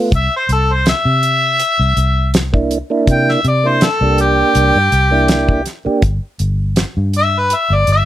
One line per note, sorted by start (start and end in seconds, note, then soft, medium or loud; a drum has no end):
0.00 0.12 A3 medium
0.00 0.12 B3 medium
0.00 0.12 F4 medium
0.12 0.27 C2 loud
0.12 0.33 E5 loud
0.12 kick loud
0.12 closed hi-hat medium
0.36 0.50 C5 medium
0.49 0.92 C2 medium
0.49 0.74 A4 medium
0.49 closed hi-hat medium
0.73 0.87 C5 medium
0.86 2.31 E5 loud
0.86 snare loud
0.86 closed hi-hat medium
1.05 1.61 C3 medium
1.23 closed hi-hat medium
1.59 closed hi-hat medium
1.79 1.92 C2 medium
1.97 2.81 C2 medium
1.97 closed hi-hat medium
2.34 snare loud
2.34 closed hi-hat medium
2.53 2.78 A#3 medium
2.53 2.78 D4 medium
2.53 2.78 E4 medium
2.53 kick medium
2.71 closed hi-hat medium
2.90 3.40 A#3 medium
2.90 3.40 D4 medium
2.90 3.41 E4 medium
3.07 3.35 C3 medium
3.07 kick loud
3.07 closed hi-hat medium
3.12 3.32 G5 medium
3.29 3.45 E5 medium
3.29 snare soft
3.44 3.88 C3 medium
3.44 3.69 D5 medium
3.44 closed hi-hat medium
3.64 3.89 A#3 medium
3.64 3.89 D4 medium
3.64 3.89 E4 medium
3.64 3.86 C5 medium
3.81 4.19 A4 medium
3.81 snare loud
3.81 closed hi-hat medium
4.01 4.42 C2 medium
4.01 4.78 A#3 medium
4.01 4.78 D4 medium
4.01 4.78 G4 medium
4.18 5.64 G4 loud
4.18 closed hi-hat medium
4.55 4.70 C2 medium
4.55 closed hi-hat medium
4.75 4.88 G2 medium
4.92 5.63 C2 medium
4.92 closed hi-hat medium
5.11 5.62 A#3 medium
5.11 5.62 D4 medium
5.11 5.62 E4 medium
5.28 snare loud
5.28 closed hi-hat medium
5.49 kick medium
5.66 snare soft
5.66 closed hi-hat medium
5.85 6.02 A#3 medium
5.85 6.03 D4 medium
5.85 6.03 G4 loud
5.85 muted fingered electric bass stroke soft
6.02 6.18 G1 medium
6.02 kick loud
6.02 closed hi-hat medium
6.39 6.83 G1 medium
6.39 closed hi-hat medium
6.76 snare medium
6.76 closed hi-hat medium
6.97 7.53 G2 medium
7.13 closed hi-hat medium
7.18 7.40 E5 loud
7.39 7.56 B4 medium
7.50 closed hi-hat medium
7.55 7.76 E5 medium
7.70 7.83 G1 medium
7.75 7.89 D5 medium
7.87 8.05 G1 medium
7.87 closed hi-hat medium
7.92 8.05 E5 medium